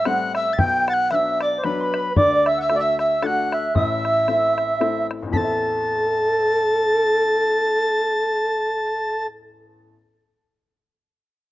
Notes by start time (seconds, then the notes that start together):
Already playing: A1
0.05 G3 A3 C4 F#5 F#6, bodhran
0.35 E5 E6, bodhran
0.53 A6
0.58 B1 B2 G5 G6, bodhran
0.88 F#5 A6, bodhran
0.93 F#6
1.11 F#3 B3 D4 E5 F#6, bodhran
1.15 E6
1.40 D5 D6, bodhran
1.58 C5
1.63 F#3 B3 D4 B4 B5, bodhran
1.80 B5 C6
1.94 bodhran
1.99 B5
2.16 D2 D3 D5 D6, bodhran
2.46 E5 E6, bodhran
2.58 F#5
2.62 E5 E6
2.70 A3 D4 F#4, bodhran
2.76 D5 E5
2.80 E5 E6
2.99 E5 E6, bodhran
3.22 A3 D4 F#4 F#5 A6, bodhran
3.26 F#6
3.52 E5, bodhran
3.75 A1 A2 E5 E6, bodhran
4.05 bodhran
4.28 A3 C4 E4, bodhran
4.58 bodhran
4.80 A3 C4 E4, bodhran
5.11 bodhran
5.23 A1
5.27 E2
5.31 E3 C4 A4 A5 B6, bodhran
5.37 A4 A6
5.44 E5